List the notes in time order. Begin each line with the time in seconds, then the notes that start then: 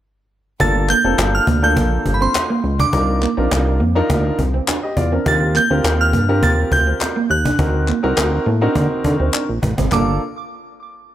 0.60 G1 A#3 D4 F4 A4 A6, cajon bass
0.75 muted clean electric guitar stroke
0.89 A#3 G6, cajon slap, clap
1.04 F1 A#3 C4 D4 F4 A4
1.18 G1, muted clean electric guitar stroke, cajon slap, clap
1.35 F6
1.47 D2 A#3, cajon bass
1.62 A#3 D4 F4 A4 G6
1.76 A#1 A#3, cajon bass
2.05 G1, muted clean electric guitar stroke, cajon bass
2.14 B5
2.21 C4 C6
2.35 cajon slap, clap
2.50 A#3
2.64 C#2, muted clean electric guitar stroke, cajon slap
2.79 D4 D6, cajon bass
2.93 C2 D4 D#4 F4 A#4 D6, cajon bass
3.08 muted clean electric guitar stroke
3.22 A#3, cajon slap, clap
3.37 A#1 C4 D4 D#4 F4 A#4
3.51 C2, muted clean electric guitar stroke, cajon slap, clap
3.80 F2 A#3, cajon slap
3.95 D4 D#4 F4 A#4
4.09 D2 A#3, cajon bass
4.38 C2, muted clean electric guitar stroke, cajon bass
4.54 C4
4.68 D4, cajon slap, clap
4.83 G4 D#5
4.97 E2 F4 D5, muted clean electric guitar stroke, cajon bass
5.12 C4 D4 A#4
5.25 D#2 C4 F4 G4 A#4 A6, cajon bass
5.41 muted clean electric guitar stroke
5.55 A#3 G6, cajon slap, clap
5.70 D2 C4 F4 G4 A#4
5.84 D#2, muted clean electric guitar stroke, cajon slap, clap
6.01 F6
6.13 G2 A#3, cajon bass
6.28 C4 D4 F4 G4 A#4
6.42 D#2 A#3 A6, cajon bass
6.72 D2 G6, muted clean electric guitar stroke, cajon bass
6.87 C4
7.01 cajon slap, clap
7.16 A#3
7.30 D#2 F#6, muted clean electric guitar stroke, cajon slap
7.45 D4, cajon bass
7.58 D2 C4 D#4 F#4 A#4, cajon bass
7.74 muted clean electric guitar stroke
7.88 A#3, clap
8.03 C2 C4 D#4 F#4 A#4
8.17 D2, muted clean electric guitar stroke, cajon slap, clap
8.46 A2 A#3
8.61 C4 D4 D#4 F#4 A#4
8.75 D3 A#3, cajon bass
9.04 D3, muted clean electric guitar stroke, cajon bass
9.20 D2 C4
9.33 D4, cajon slap, clap
9.49 A#1
9.62 A1, muted clean electric guitar stroke, cajon bass
9.78 G#1 C4, cajon bass
9.92 G1 A#3 D4 F4 A4 D6, cajon bass, clap